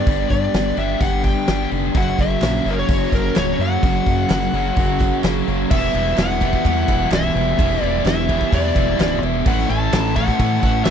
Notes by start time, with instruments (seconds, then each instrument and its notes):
Already playing: overdriven electric guitar G3 B3 D4 G4, lead electric guitar D5
0.06 fingered electric bass G1, overdriven electric guitar G2 D3 G3 B3 D4 G4, kick, open hi-hat
0.30 fingered electric bass G2, lead electric guitar D5, kick, open hi-hat
0.54 fingered electric bass G1, overdriven electric guitar B3, snare, open hi-hat
0.77 fingered electric bass G1, overdriven electric guitar G2 D3 G3 B3 D4 G4, lead electric guitar E5, open hi-hat
1.00 fingered electric bass G1, overdriven electric guitar G4, lead electric guitar F#5, kick, open hi-hat
1.24 overdriven electric guitar D4, lead electric guitar G5, kick, open hi-hat
1.47 fingered electric bass G1, overdriven electric guitar G2 D3 G3 B3 D4 G4, snare, open hi-hat
1.71 fingered electric bass F1, overdriven electric guitar B3, open hi-hat
1.95 fingered electric bass F#1, overdriven electric guitar F#2 C#3 F#3 A#3 C#4 F#4, lead electric guitar F#5, kick, open hi-hat
2.18 fingered electric bass F#1, lead electric guitar E5, kick, open hi-hat
2.42 fingered electric bass A#1, overdriven electric guitar F#2 C#3 F#3 A#3, snare, clap, open hi-hat
2.65 fingered electric bass F#1, overdriven electric guitar F#2 C#3 F#3 A#3 C#4 F#4, open hi-hat
2.71 lead electric guitar A#4
2.79 lead electric guitar C#5
2.88 fingered electric bass F#1, overdriven electric guitar F#2 C#3 F#3 F#4, kick, open hi-hat
3.12 fingered electric bass F#1, overdriven electric guitar C#4, lead electric guitar A#4, kick, open hi-hat
3.36 fingered electric bass C#1, overdriven electric guitar F#2 C#3 F#3 A#3 C#4 F#4, lead electric guitar C#5, snare, clap, open hi-hat
3.59 fingered electric bass F#2, overdriven electric guitar F#2 C#3 F#3 A#3, lead electric guitar F#5, open hi-hat
3.83 fingered electric bass F#1, overdriven electric guitar F#2 C#3 F#3 A#3 C#4 F#4, kick, open hi-hat
4.06 fingered electric bass F#2, kick, open hi-hat
4.30 fingered electric bass F#1, overdriven electric guitar F#2 C#3 F#3 A#3, snare, clap, open hi-hat
4.53 fingered electric bass F#1, overdriven electric guitar F#2 C#3 F#3 A#3 C#4 F#4, open hi-hat
4.76 fingered electric bass F#1, overdriven electric guitar F#2 C#3 F#3 F#4, kick, open hi-hat
5.00 overdriven electric guitar C#4, kick, clap, open hi-hat
5.23 fingered electric bass F#1, overdriven electric guitar F#2 C#3 F#3 A#3 C#4 F#4, snare, clap, open hi-hat
5.47 fingered electric bass F#1, overdriven electric guitar F#2 C#3 F#3 A#3, open hi-hat
5.71 fingered electric bass E1, overdriven electric guitar E2 B2 E3 G3 B3 E4, lead electric guitar E5, kick, crash
5.84 snare
5.94 fingered electric bass E1, overdriven electric guitar E3 G3 B3 E4, crash
6.18 fingered electric bass E1, overdriven electric guitar E3 G3 B3 E4, lead electric guitar F#5, snare, clap, crash
6.41 overdriven electric guitar E2 B2 E3 G3 B3 E4, kick, crash
6.53 kick
6.65 overdriven electric guitar E2 B2 E3 G3 B3 E4, fingered electric bass E2, kick, crash
6.88 fingered electric bass E1, overdriven electric guitar E3 G3 B3 E4, kick, crash
7.11 fingered electric bass B0, overdriven electric guitar E2 B2 E3 G3 B3 E4, lead electric guitar E5, snare, clap, crash
7.34 fingered electric bass E1, overdriven electric guitar E3 G3 B3 E4, crash
7.58 fingered electric bass E1, overdriven electric guitar E2 B2 E3 G3 B3 E4, kick, crash
7.82 fingered electric bass E1, overdriven electric guitar E3 G3 B3 E4, lead electric guitar D5, crash
8.05 fingered electric bass E1, overdriven electric guitar E3 G3 B3 E4, lead electric guitar E5, snare, clap, crash
8.28 overdriven electric guitar E2 B2 E3 G3 B3 E4, kick, crash
8.41 kick
8.51 overdriven electric guitar E2 B2 E3 G3 B3 E4, fingered electric bass E2, lead electric guitar D5, kick, crash
8.75 fingered electric bass E1, overdriven electric guitar E3 G3 B3 E4, kick, crash
8.99 fingered electric bass B0, overdriven electric guitar E2 B2 E3 G3 B3 E4, snare, clap, crash
9.22 fingered electric bass E1, overdriven electric guitar E3 G3 B3 E4, crash
9.46 fingered electric bass A1, overdriven electric guitar A2 E3 A3 C#4 E4 A4, lead electric guitar F#5, kick, crash
9.59 snare
9.69 fingered electric bass A1, overdriven electric guitar A3 C#4 E4 A4, lead electric guitar A5, crash
9.93 fingered electric bass A1, overdriven electric guitar A3 C#4 E4 A4, snare, clap, crash
10.16 overdriven electric guitar A2 E3 A3 C#4 E4 A4, lead electric guitar F#5, kick, crash
10.28 kick, snare
10.39 fingered electric bass A2, overdriven electric guitar A2 E3 A3 C#4 E4 A4, kick, crash
10.60 fingered electric bass A1, overdriven electric guitar C#4 E4 A4, lead electric guitar F#5, kick, crash
10.65 overdriven electric guitar A3
10.84 fingered electric bass E1, overdriven electric guitar A2 E3 A3 C#4 E4, lead electric guitar E5, snare, clap, crash